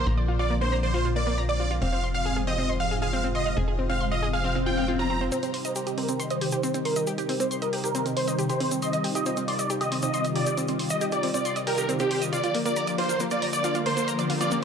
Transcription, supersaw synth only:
0, 0, Header, 1, 2, 480
1, 0, Start_track
1, 0, Key_signature, -3, "minor"
1, 0, Tempo, 437956
1, 70, Time_signature, 4, 2, 24, 8
1, 16047, End_track
2, 0, Start_track
2, 0, Title_t, "Supersaw synth"
2, 0, Program_c, 0, 81
2, 430, Note_on_c, 0, 74, 84
2, 591, Note_off_c, 0, 74, 0
2, 671, Note_on_c, 0, 72, 90
2, 831, Note_off_c, 0, 72, 0
2, 911, Note_on_c, 0, 72, 95
2, 1151, Note_off_c, 0, 72, 0
2, 1271, Note_on_c, 0, 74, 89
2, 1511, Note_off_c, 0, 74, 0
2, 1632, Note_on_c, 0, 74, 93
2, 1872, Note_off_c, 0, 74, 0
2, 1990, Note_on_c, 0, 77, 98
2, 2231, Note_off_c, 0, 77, 0
2, 2349, Note_on_c, 0, 77, 92
2, 2590, Note_off_c, 0, 77, 0
2, 2709, Note_on_c, 0, 75, 94
2, 2951, Note_off_c, 0, 75, 0
2, 3069, Note_on_c, 0, 77, 88
2, 3230, Note_off_c, 0, 77, 0
2, 3309, Note_on_c, 0, 77, 88
2, 3550, Note_off_c, 0, 77, 0
2, 3670, Note_on_c, 0, 75, 90
2, 3911, Note_off_c, 0, 75, 0
2, 4269, Note_on_c, 0, 77, 89
2, 4430, Note_off_c, 0, 77, 0
2, 4510, Note_on_c, 0, 75, 88
2, 4670, Note_off_c, 0, 75, 0
2, 4749, Note_on_c, 0, 77, 94
2, 4990, Note_off_c, 0, 77, 0
2, 5109, Note_on_c, 0, 79, 93
2, 5350, Note_off_c, 0, 79, 0
2, 5470, Note_on_c, 0, 82, 94
2, 5711, Note_off_c, 0, 82, 0
2, 5831, Note_on_c, 0, 72, 103
2, 6071, Note_off_c, 0, 72, 0
2, 6191, Note_on_c, 0, 72, 97
2, 6431, Note_off_c, 0, 72, 0
2, 6550, Note_on_c, 0, 70, 99
2, 6791, Note_off_c, 0, 70, 0
2, 6911, Note_on_c, 0, 72, 82
2, 7071, Note_off_c, 0, 72, 0
2, 7151, Note_on_c, 0, 72, 89
2, 7391, Note_off_c, 0, 72, 0
2, 7510, Note_on_c, 0, 70, 93
2, 7751, Note_off_c, 0, 70, 0
2, 8111, Note_on_c, 0, 72, 90
2, 8271, Note_off_c, 0, 72, 0
2, 8351, Note_on_c, 0, 70, 88
2, 8511, Note_off_c, 0, 70, 0
2, 8590, Note_on_c, 0, 70, 99
2, 8831, Note_off_c, 0, 70, 0
2, 8950, Note_on_c, 0, 72, 93
2, 9191, Note_off_c, 0, 72, 0
2, 9309, Note_on_c, 0, 72, 94
2, 9550, Note_off_c, 0, 72, 0
2, 9670, Note_on_c, 0, 75, 100
2, 9911, Note_off_c, 0, 75, 0
2, 10030, Note_on_c, 0, 75, 94
2, 10271, Note_off_c, 0, 75, 0
2, 10389, Note_on_c, 0, 74, 97
2, 10630, Note_off_c, 0, 74, 0
2, 10749, Note_on_c, 0, 75, 82
2, 10910, Note_off_c, 0, 75, 0
2, 10989, Note_on_c, 0, 75, 91
2, 11230, Note_off_c, 0, 75, 0
2, 11350, Note_on_c, 0, 74, 94
2, 11591, Note_off_c, 0, 74, 0
2, 11950, Note_on_c, 0, 75, 93
2, 12110, Note_off_c, 0, 75, 0
2, 12189, Note_on_c, 0, 74, 92
2, 12350, Note_off_c, 0, 74, 0
2, 12430, Note_on_c, 0, 74, 95
2, 12671, Note_off_c, 0, 74, 0
2, 12789, Note_on_c, 0, 70, 98
2, 13030, Note_off_c, 0, 70, 0
2, 13150, Note_on_c, 0, 67, 99
2, 13391, Note_off_c, 0, 67, 0
2, 13510, Note_on_c, 0, 74, 99
2, 13751, Note_off_c, 0, 74, 0
2, 13870, Note_on_c, 0, 74, 99
2, 14111, Note_off_c, 0, 74, 0
2, 14229, Note_on_c, 0, 72, 98
2, 14470, Note_off_c, 0, 72, 0
2, 14590, Note_on_c, 0, 74, 88
2, 14751, Note_off_c, 0, 74, 0
2, 14830, Note_on_c, 0, 74, 91
2, 15071, Note_off_c, 0, 74, 0
2, 15189, Note_on_c, 0, 72, 88
2, 15431, Note_off_c, 0, 72, 0
2, 15790, Note_on_c, 0, 74, 92
2, 15951, Note_off_c, 0, 74, 0
2, 16047, End_track
0, 0, End_of_file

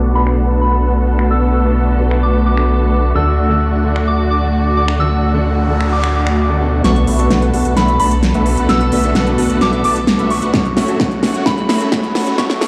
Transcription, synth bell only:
0, 0, Header, 1, 2, 480
1, 0, Start_track
1, 0, Key_signature, 2, "minor"
1, 0, Tempo, 461538
1, 1357, Time_signature, 4, 2, 24, 8
1, 13183, End_track
2, 0, Start_track
2, 0, Title_t, "Synth bell"
2, 0, Program_c, 0, 98
2, 0, Note_on_c, 0, 86, 89
2, 116, Note_off_c, 0, 86, 0
2, 159, Note_on_c, 0, 83, 86
2, 627, Note_off_c, 0, 83, 0
2, 640, Note_on_c, 0, 83, 86
2, 1359, Note_on_c, 0, 88, 95
2, 1380, Note_off_c, 0, 83, 0
2, 2320, Note_on_c, 0, 86, 93
2, 2347, Note_off_c, 0, 88, 0
2, 2549, Note_off_c, 0, 86, 0
2, 2561, Note_on_c, 0, 86, 90
2, 3281, Note_on_c, 0, 88, 96
2, 3301, Note_off_c, 0, 86, 0
2, 4198, Note_off_c, 0, 88, 0
2, 4239, Note_on_c, 0, 86, 91
2, 4462, Note_off_c, 0, 86, 0
2, 4480, Note_on_c, 0, 86, 89
2, 4948, Note_off_c, 0, 86, 0
2, 4960, Note_on_c, 0, 86, 83
2, 5182, Note_off_c, 0, 86, 0
2, 5199, Note_on_c, 0, 88, 93
2, 6162, Note_on_c, 0, 86, 90
2, 6187, Note_off_c, 0, 88, 0
2, 6269, Note_off_c, 0, 86, 0
2, 6401, Note_on_c, 0, 86, 82
2, 7078, Note_off_c, 0, 86, 0
2, 7118, Note_on_c, 0, 85, 97
2, 8077, Note_on_c, 0, 83, 92
2, 8107, Note_off_c, 0, 85, 0
2, 8300, Note_off_c, 0, 83, 0
2, 8317, Note_on_c, 0, 83, 98
2, 9038, Note_on_c, 0, 88, 110
2, 9059, Note_off_c, 0, 83, 0
2, 9956, Note_off_c, 0, 88, 0
2, 9999, Note_on_c, 0, 86, 100
2, 10227, Note_off_c, 0, 86, 0
2, 10239, Note_on_c, 0, 86, 101
2, 10685, Note_off_c, 0, 86, 0
2, 10719, Note_on_c, 0, 85, 98
2, 11918, Note_on_c, 0, 83, 98
2, 11954, Note_off_c, 0, 85, 0
2, 12146, Note_off_c, 0, 83, 0
2, 12159, Note_on_c, 0, 83, 96
2, 12836, Note_off_c, 0, 83, 0
2, 12878, Note_on_c, 0, 85, 101
2, 13183, Note_off_c, 0, 85, 0
2, 13183, End_track
0, 0, End_of_file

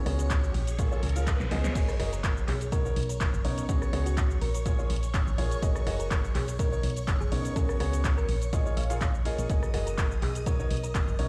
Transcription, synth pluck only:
0, 0, Header, 1, 2, 480
1, 0, Start_track
1, 0, Key_signature, 6, "major"
1, 0, Tempo, 483871
1, 1740, Time_signature, 4, 2, 24, 8
1, 11195, End_track
2, 0, Start_track
2, 0, Title_t, "Synth pluck"
2, 0, Program_c, 0, 84
2, 2111, Note_on_c, 0, 70, 88
2, 2181, Note_off_c, 0, 70, 0
2, 2221, Note_on_c, 0, 70, 81
2, 2303, Note_off_c, 0, 70, 0
2, 2459, Note_on_c, 0, 68, 99
2, 2677, Note_off_c, 0, 68, 0
2, 2699, Note_on_c, 0, 70, 95
2, 3043, Note_off_c, 0, 70, 0
2, 3069, Note_on_c, 0, 70, 87
2, 3419, Note_off_c, 0, 70, 0
2, 4029, Note_on_c, 0, 66, 85
2, 4100, Note_off_c, 0, 66, 0
2, 4139, Note_on_c, 0, 66, 78
2, 4222, Note_off_c, 0, 66, 0
2, 4379, Note_on_c, 0, 70, 95
2, 4462, Note_off_c, 0, 70, 0
2, 4508, Note_on_c, 0, 70, 82
2, 4579, Note_off_c, 0, 70, 0
2, 5949, Note_on_c, 0, 70, 91
2, 6020, Note_off_c, 0, 70, 0
2, 6059, Note_on_c, 0, 70, 78
2, 6142, Note_off_c, 0, 70, 0
2, 6300, Note_on_c, 0, 68, 98
2, 6518, Note_off_c, 0, 68, 0
2, 6541, Note_on_c, 0, 70, 96
2, 6884, Note_off_c, 0, 70, 0
2, 7148, Note_on_c, 0, 68, 95
2, 7477, Note_off_c, 0, 68, 0
2, 7499, Note_on_c, 0, 70, 95
2, 7681, Note_off_c, 0, 70, 0
2, 8109, Note_on_c, 0, 70, 96
2, 8271, Note_off_c, 0, 70, 0
2, 8460, Note_on_c, 0, 75, 90
2, 8641, Note_off_c, 0, 75, 0
2, 8701, Note_on_c, 0, 77, 95
2, 9180, Note_off_c, 0, 77, 0
2, 9789, Note_on_c, 0, 70, 94
2, 9860, Note_off_c, 0, 70, 0
2, 9899, Note_on_c, 0, 70, 80
2, 9982, Note_off_c, 0, 70, 0
2, 10139, Note_on_c, 0, 68, 96
2, 10357, Note_off_c, 0, 68, 0
2, 10379, Note_on_c, 0, 70, 97
2, 10723, Note_off_c, 0, 70, 0
2, 10748, Note_on_c, 0, 70, 91
2, 11099, Note_off_c, 0, 70, 0
2, 11195, End_track
0, 0, End_of_file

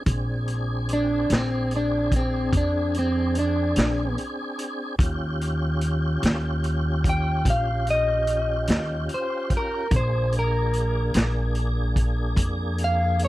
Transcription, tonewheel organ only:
0, 0, Header, 1, 2, 480
1, 0, Start_track
1, 0, Tempo, 820793
1, 40, Time_signature, 12, 3, 24, 8
1, 7767, End_track
2, 0, Start_track
2, 0, Title_t, "Tonewheel organ"
2, 0, Program_c, 0, 16
2, 40, Note_on_c, 0, 60, 62
2, 40, Note_on_c, 0, 62, 61
2, 41, Note_on_c, 0, 68, 60
2, 2898, Note_off_c, 0, 62, 0
2, 2899, Note_off_c, 0, 60, 0
2, 2899, Note_off_c, 0, 68, 0
2, 2917, Note_on_c, 0, 61, 61
2, 2918, Note_on_c, 0, 65, 62
2, 2920, Note_on_c, 0, 67, 59
2, 5776, Note_off_c, 0, 61, 0
2, 5776, Note_off_c, 0, 65, 0
2, 5777, Note_off_c, 0, 67, 0
2, 5807, Note_on_c, 0, 62, 65
2, 5811, Note_on_c, 0, 58, 64
2, 5813, Note_on_c, 0, 68, 62
2, 7767, Note_off_c, 0, 58, 0
2, 7767, Note_off_c, 0, 62, 0
2, 7767, Note_off_c, 0, 68, 0
2, 7767, End_track
0, 0, End_of_file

